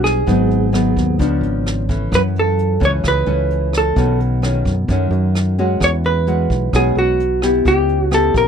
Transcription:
0.00 0.22 B1 medium
0.00 0.25 B2 medium
0.00 0.25 G3 medium
0.00 0.25 D4 medium
0.00 0.25 F#4 medium
0.04 1.39 G#4 medium
0.04 cross-stick medium
0.04 closed hi-hat soft
0.26 0.93 G#1 medium
0.26 1.17 G#2 medium
0.26 0.69 F#3 medium
0.26 0.70 B3 medium
0.26 0.70 D#4 medium
0.26 kick medium
0.26 closed hi-hat soft
0.51 closed hi-hat soft
0.72 1.15 F#3 medium
0.72 1.15 B3 medium
0.72 1.16 D#4 medium
0.72 cross-stick medium
0.72 closed hi-hat soft
0.96 1.18 D#2 medium
0.96 kick medium
0.96 closed hi-hat soft
1.19 1.40 C#2 medium
1.19 2.09 C#3 medium
1.19 1.85 F3 medium
1.19 1.85 B3 medium
1.19 1.85 D4 medium
1.19 kick medium
1.19 closed hi-hat soft
1.41 2.07 G#1 medium
1.41 closed hi-hat soft
1.66 cross-stick medium
1.66 closed hi-hat soft
1.89 2.77 E3 medium
1.89 2.78 A3 medium
1.89 2.78 C#4 medium
1.89 kick medium
1.89 closed hi-hat soft
2.12 2.77 F#2 medium
2.12 3.02 F#2 medium
2.12 2.21 B4 medium
2.12 kick medium
2.12 cross-stick medium
2.12 closed hi-hat soft
2.36 2.85 A4 medium
2.36 closed hi-hat soft
2.59 closed hi-hat soft
2.80 3.03 C#2 medium
2.80 3.23 E3 medium
2.80 3.23 A3 medium
2.80 3.24 C#4 medium
2.80 kick medium
2.80 closed hi-hat soft
2.85 2.91 C#5 medium
3.03 3.25 C#2 medium
3.03 3.94 C#3 medium
3.03 kick medium
3.03 cross-stick medium
3.03 closed hi-hat soft
3.08 3.77 B4 medium
3.26 3.92 C#2 medium
3.26 3.94 E3 medium
3.26 3.94 A3 medium
3.26 3.94 C#4 medium
3.26 closed hi-hat soft
3.50 closed hi-hat soft
3.73 cross-stick medium
3.73 closed hi-hat soft
3.78 4.19 A4 medium
3.96 4.62 B1 medium
3.96 4.86 B2 medium
3.96 4.39 D#3 medium
3.96 4.39 A3 medium
3.96 4.39 C#4 medium
3.96 kick medium
3.96 closed hi-hat soft
4.20 closed hi-hat soft
4.42 4.72 D#3 medium
4.42 4.72 A3 medium
4.42 4.73 C#4 medium
4.42 cross-stick medium
4.42 closed hi-hat soft
4.65 4.87 F#2 medium
4.65 kick medium
4.65 closed hi-hat soft
4.88 5.10 F#2 medium
4.88 5.79 F#2 medium
4.88 5.54 D#3 medium
4.88 5.55 A3 medium
4.88 5.55 C#4 medium
4.88 kick medium
4.88 closed hi-hat soft
5.11 5.76 F#2 medium
5.11 closed hi-hat soft
5.35 cross-stick medium
5.35 closed hi-hat soft
5.58 6.26 G#3 medium
5.58 6.26 C#4 medium
5.58 6.27 F#4 medium
5.58 closed hi-hat soft
5.80 6.46 E2 medium
5.80 6.71 E3 medium
5.80 5.90 C#5 loud
5.80 kick medium
5.80 cross-stick medium
5.80 closed hi-hat soft
6.04 6.76 B4 medium
6.04 closed hi-hat soft
6.27 6.69 G#3 medium
6.27 6.70 C#4 medium
6.27 6.70 F#4 medium
6.27 closed hi-hat soft
6.50 6.72 B1 medium
6.50 kick medium
6.50 closed hi-hat soft
6.73 6.95 B1 medium
6.73 7.63 B2 medium
6.73 7.19 G#3 medium
6.73 7.19 C#4 medium
6.73 7.20 F#4 medium
6.73 6.98 G#4 medium
6.73 kick medium
6.73 cross-stick medium
6.73 closed hi-hat soft
6.95 7.61 B1 medium
6.95 7.40 F#4 medium
6.95 closed hi-hat soft
7.20 closed hi-hat soft
7.42 8.08 B3 medium
7.42 8.08 E4 medium
7.42 8.08 G4 medium
7.42 cross-stick medium
7.42 closed hi-hat soft
7.65 8.31 C#2 medium
7.65 8.48 C#3 medium
7.65 8.03 G4 medium
7.65 kick medium
7.65 closed hi-hat soft
7.89 closed hi-hat soft
8.03 8.14 F#4 medium
8.11 8.42 B3 medium
8.11 8.42 E4 medium
8.11 8.43 G4 medium
8.11 8.37 A4 medium
8.11 cross-stick medium
8.11 closed hi-hat soft
8.34 8.48 A#1 medium
8.34 8.48 A#4 medium
8.34 kick medium
8.34 closed hi-hat soft

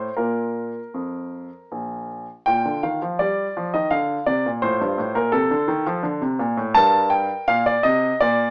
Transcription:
0.00 0.13 C5 medium
0.17 0.71 A#2 soft
0.17 0.79 A#3 soft
0.17 0.78 F4 soft
0.17 2.08 A#4 medium
0.94 1.47 F2 soft
1.72 2.24 A#1 soft
2.46 2.64 A#2 soft
2.46 4.60 F4 soft
2.46 2.83 G5 medium
2.65 2.83 D3 soft
2.83 3.01 D#3 soft
2.83 3.20 F5 medium
3.02 3.19 F3 soft
3.19 3.46 G3 soft
3.19 3.74 D5 medium
3.57 3.74 F3 soft
3.74 3.91 D#3 soft
3.74 3.92 D#5 medium
3.91 4.17 D3 soft
3.91 4.23 F5 medium
4.26 4.44 C3 medium
4.26 4.48 D5 medium
4.46 4.63 A#2 soft
4.62 4.80 A2 medium
4.62 6.01 F4 soft
4.62 5.16 C5 medium
4.81 4.98 G2 medium
4.98 5.15 A2 medium
5.15 5.33 A#2 soft
5.15 5.34 A#4 medium
5.32 5.50 C3 medium
5.32 5.97 A4 medium
5.51 5.68 D3 medium
5.68 5.86 D#3 medium
5.87 6.04 F3 medium
6.03 6.21 D3 medium
6.21 6.39 C3 medium
6.39 6.57 A#2 medium
6.57 6.75 A2 medium
6.75 7.27 G2 medium
6.75 8.50 A#4 soft
6.75 7.11 A5 loud
7.10 7.47 G5 medium
7.48 7.74 A#2 medium
7.48 7.66 F5 medium
7.66 7.84 D5 medium
7.83 8.11 C3 medium
7.83 8.17 D#5 medium
8.21 8.50 A#2 medium
8.21 8.50 D5 medium

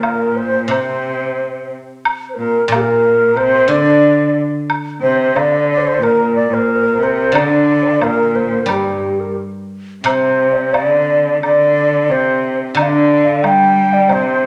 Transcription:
0.00 0.73 A#2 medium
0.00 0.38 A#4 medium
0.00 0.39 A#4 medium
0.00 high woodblock soft
0.00 low woodblock soft
0.36 0.68 C5 medium
0.36 0.70 C5 medium
0.68 2.70 C3 soft
0.68 1.72 C3 medium
0.68 1.66 C5 medium
0.68 1.67 C5 medium
0.68 high woodblock soft
2.05 high woodblock medium
2.29 2.36 C5 soft
2.34 2.68 A#2 medium
2.34 2.68 A#4 medium
2.68 3.69 A#2 medium
2.68 3.37 A#2 medium
2.68 2.77 A#4 medium
2.68 3.38 A#4 medium
2.72 2.84 G4 medium
2.72 high woodblock soft
2.72 low woodblock soft
2.83 3.36 A#4 medium
3.35 3.71 C3 medium
3.35 3.70 C5 medium
3.35 3.73 C5 loud
3.35 high woodblock soft
3.68 5.68 D3 medium
3.68 4.36 D3 medium
3.68 4.36 D5 medium
3.68 4.37 D5 loud
4.70 high woodblock medium
5.01 5.36 C3 medium
5.01 5.17 C5 medium
5.01 5.18 C5 medium
5.19 5.35 C5 medium
5.19 5.38 C5 medium
5.35 6.01 D3 medium
5.35 5.67 D5 medium
5.35 5.69 D5 medium
5.35 high woodblock soft
5.35 low woodblock soft
5.68 5.79 D5 medium
5.68 5.89 D5 medium
5.77 5.84 C5 medium
5.83 5.95 D5 medium
5.87 6.04 C5 medium
5.96 6.48 A#2 medium
5.96 6.04 C5 medium
6.03 6.35 A#4 loud
6.03 6.51 A#4 medium
6.03 high woodblock soft
6.36 6.55 D5 medium
6.49 7.00 A#2 medium
6.49 6.60 A#4 medium
6.54 7.05 A#4 medium
6.59 6.69 C5 medium
6.68 6.77 A#4 medium
6.75 6.85 C5 medium
6.83 6.95 A#4 medium
6.94 7.03 C5 medium
6.98 7.33 C3 medium
6.98 7.35 A#4 medium
7.03 7.37 C5 medium
7.32 8.03 D3 medium
7.32 9.35 D3 soft
7.32 7.80 D5 medium
7.32 high woodblock medium
7.36 8.05 D5 medium
7.80 7.83 C5 medium
7.80 7.83 D5 soft
7.80 7.86 A#5 soft
7.87 7.91 G5 soft
7.92 7.97 D5 soft
7.92 7.95 F5 soft
7.97 8.66 A#2 medium
7.97 8.03 C5 medium
8.01 8.61 A#4 medium
8.01 8.37 A#4 medium
8.01 high woodblock soft
8.01 low woodblock soft
8.36 8.72 C5 medium
8.62 10.72 G3 medium
8.62 8.72 A#4 soft
8.67 9.31 G2 medium
8.67 9.37 G4 medium
8.67 9.21 G4 medium
8.67 high woodblock soft
9.20 9.37 A#4 medium
10.04 12.08 C3 soft
10.04 10.76 C3 medium
10.04 10.50 C5 medium
10.04 10.75 C5 medium
10.04 high woodblock medium
10.52 10.58 D5 soft
10.57 10.75 C5 medium
10.73 11.42 D3 medium
10.73 11.41 D5 medium
10.73 11.42 D5 medium
10.73 high woodblock soft
10.73 low woodblock soft
11.42 12.11 D3 medium
11.42 12.13 D5 loud
11.42 11.90 D5 medium
11.42 high woodblock soft
11.92 12.08 D5 medium
12.10 12.59 C3 medium
12.10 12.56 C5 medium
12.10 12.60 C5 medium
12.75 14.46 D3 medium
12.75 13.45 D3 medium
12.75 12.84 D5 medium
12.75 13.49 D5 medium
12.75 high woodblock medium
12.82 12.91 F5 medium
12.89 13.27 D5 medium
13.25 13.44 F5 medium
13.42 14.12 G3 medium
13.42 13.95 G5 medium
13.42 high woodblock soft
13.42 low woodblock soft
13.47 14.14 G5 medium
13.93 14.10 D5 medium
14.09 14.46 C3 medium
14.09 14.46 C5 medium
14.09 high woodblock soft

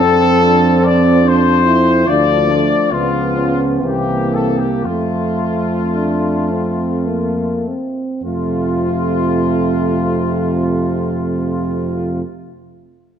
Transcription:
0.00 2.03 F2 medium
0.00 2.03 F3 medium
0.00 2.04 C4 medium
0.00 0.43 C4 medium
0.00 0.85 A4 medium
0.41 0.83 D4 medium
0.82 1.24 C4 soft
0.82 1.25 D5 medium
1.21 1.63 D4 medium
1.26 2.08 C5 medium
1.65 2.07 E4 medium
2.06 2.74 D2 soft
2.06 2.88 F3 soft
2.06 2.88 D4 soft
2.06 2.49 F4 medium
2.06 2.92 D5 medium
2.48 2.91 A3 soft
2.91 3.81 C#2 soft
2.91 3.83 F3 soft
2.91 3.36 B3 soft
2.91 3.86 B3 soft
2.91 3.67 F4 medium
3.36 3.83 C#4 soft
3.82 4.86 C2 soft
3.82 4.67 E3 soft
3.82 4.84 A#3 soft
3.82 4.69 C4 soft
3.82 4.32 G4 soft
4.34 4.59 A4 soft
4.58 4.85 G4 soft
4.84 7.79 F2 soft
4.84 7.75 A3 soft
4.84 7.65 A3 soft
4.84 5.81 C4 soft
4.84 7.64 F4 soft
5.94 6.53 D4 soft
6.51 7.09 C4 soft
7.07 7.69 A#3 soft
7.68 8.24 C4 soft
8.23 12.22 F2 soft
8.23 12.22 C3 soft
8.23 12.23 A3 soft
8.23 12.22 F4 soft

